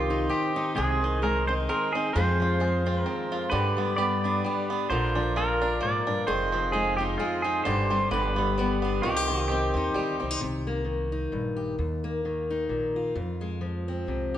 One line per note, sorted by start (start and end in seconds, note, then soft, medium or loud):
0.00 0.27 C2 loud
0.00 1.00 D#3 medium
0.00 0.76 G3 medium
0.00 1.22 C4 medium
0.00 0.11 D#4 medium
0.00 0.32 F4 medium
0.00 0.28 G4 medium
0.00 0.75 G4 medium
0.00 0.82 G4 medium
0.00 3.49 C5 medium
0.00 2.12 D#5 medium
0.00 0.75 C6 medium
0.10 0.55 D#4 medium
0.29 1.69 C4 medium
0.29 0.73 G4 medium
0.29 0.78 G4 medium
0.56 0.74 D#4 medium
0.56 0.82 D#4 medium
0.75 1.65 C2 loud
0.75 1.01 C3 medium
0.75 2.15 G#3 medium
0.75 1.23 G#4 medium
0.75 3.50 G#4 medium
0.75 1.68 G#4 medium
0.75 2.13 C6 medium
1.01 2.14 D#3 medium
1.01 1.48 D#4 medium
1.22 2.14 G#3 medium
1.22 2.20 G#4 medium
1.22 1.47 A#4 medium
1.47 1.94 C4 medium
1.47 1.94 D#4 medium
1.47 1.53 C5 medium
1.69 2.20 C4 medium
1.69 2.13 G#4 medium
1.69 1.95 A#4 medium
1.93 2.15 C4 medium
1.93 2.20 D#4 medium
1.93 2.12 G#4 medium
2.13 3.06 F2 medium
2.13 3.03 F2 loud
2.13 2.38 F3 medium
2.13 3.51 F3 medium
2.13 2.59 G#3 medium
2.13 2.85 C4 medium
2.13 3.51 G#4 medium
2.13 3.04 C5 medium
2.13 3.52 F5 medium
2.13 3.52 C6 medium
2.40 3.50 F3 medium
2.40 2.85 F4 medium
2.60 3.52 G#3 medium
2.60 3.58 G#4 medium
2.86 3.52 C4 medium
2.86 3.31 F4 medium
3.04 3.31 D#2 medium
3.04 3.57 C4 medium
3.04 3.48 A#4 medium
3.32 3.50 F2 medium
3.32 3.57 F4 medium
3.50 4.87 G2 medium
3.50 4.40 G2 loud
3.50 4.89 D3 medium
3.50 4.89 G4 medium
3.50 4.44 G4 medium
3.50 3.94 B4 medium
3.50 4.89 B4 medium
3.50 6.25 D5 medium
3.50 4.89 B5 medium
3.77 4.87 G3 medium
3.77 4.23 B3 medium
3.96 4.88 B3 medium
3.96 4.95 G4 medium
3.96 4.65 D5 loud
4.24 4.69 B3 medium
4.24 4.70 D4 medium
4.44 4.95 G3 medium
4.44 4.89 G4 medium
4.70 4.95 B3 medium
4.70 4.89 D4 medium
4.88 5.78 A#1 loud
4.88 6.29 A#2 medium
4.88 6.27 D3 medium
4.88 6.25 F4 medium
4.88 6.28 F4 medium
4.88 6.26 A#4 medium
4.88 5.37 C5 medium
4.88 6.26 A#5 medium
5.15 6.26 F3 medium
5.15 5.60 D4 medium
5.36 6.26 A#3 medium
5.36 6.33 F4 medium
5.36 5.84 A#4 loud
5.62 6.06 D4 medium
5.62 6.26 D4 medium
5.81 6.07 G#2 medium
5.81 6.32 A#3 medium
5.81 6.25 D5 loud
6.07 6.27 G2 medium
6.07 6.33 D4 medium
6.27 7.16 F1 loud
6.27 7.62 F2 medium
6.27 7.65 D#3 medium
6.27 7.64 F4 medium
6.27 7.19 G#4 medium
6.27 6.70 C5 medium
6.27 7.64 C5 medium
6.27 7.64 D#5 medium
6.27 7.64 G#5 medium
6.52 7.63 F3 medium
6.52 6.97 C4 medium
6.72 7.65 G#3 medium
6.72 7.70 D#4 medium
6.72 6.96 G#4 loud
6.97 7.43 C4 medium
6.97 7.44 D#4 medium
6.97 7.03 G4 medium
7.18 7.70 G#3 medium
7.18 7.42 F4 medium
7.18 7.63 G#4 medium
7.42 7.70 C4 medium
7.42 7.63 D#4 medium
7.42 7.65 G#4 medium
7.64 8.09 G1 loud
7.64 8.09 G2 medium
7.64 8.10 D3 medium
7.64 10.38 G4 medium
7.64 8.13 G4 medium
7.64 8.11 C5 loud
7.64 8.11 C5 medium
7.64 9.02 D5 medium
7.64 8.11 C6 medium
7.90 8.38 G3 medium
7.90 8.16 C4 medium
8.11 8.99 G1 loud
8.11 9.01 G2 medium
8.11 9.03 D3 medium
8.11 9.05 G4 medium
8.11 9.06 B4 loud
8.11 9.03 B4 medium
8.11 9.03 B5 medium
8.36 9.08 G3 medium
8.36 8.81 B3 medium
8.58 9.08 G3 medium
8.58 9.01 B3 medium
8.82 9.08 B3 medium
8.82 9.01 D4 medium
9.02 9.70 C2 loud
9.02 9.29 C3 medium
9.02 10.40 D#3 medium
9.02 9.16 F4 medium
9.02 9.47 G4 medium
9.02 10.40 C5 medium
9.02 10.40 D#5 medium
9.02 10.40 C6 medium
9.16 9.94 G4 medium
9.28 10.83 D#3 medium
9.28 9.73 C4 medium
9.48 10.19 C4 medium
9.48 10.45 D#4 medium
9.48 10.15 G4 medium
9.74 9.93 D#2 medium
9.74 10.19 C4 medium
9.74 10.20 D#4 medium
9.94 10.18 D2 medium
9.94 10.45 G3 medium
9.94 10.38 G4 medium
10.20 10.39 C2 medium
10.20 10.45 C4 medium
10.20 10.31 C4 medium
10.31 10.40 D#4 soft
10.41 11.29 C2 medium
10.41 10.86 C3 medium
10.67 11.76 A#3 soft
10.85 12.23 D#3 medium
11.12 11.75 D#4 medium
11.32 11.76 A#1 medium
11.32 11.75 G2 medium
11.56 11.75 G4 soft
11.78 12.66 D#2 medium
11.78 13.15 D#2 medium
12.04 13.13 A#3 medium
12.25 13.16 D#3 medium
12.51 13.13 D#4 medium
12.69 13.13 A#1 medium
12.69 13.15 A#2 medium
12.96 14.33 F4 soft
13.15 14.38 F2 medium
13.15 14.03 F2 loud
13.41 14.38 G#3 medium
13.61 14.38 F3 medium
13.88 14.38 C4 medium
14.07 14.38 C2 medium
14.07 14.38 C3 medium
14.34 14.38 G4 medium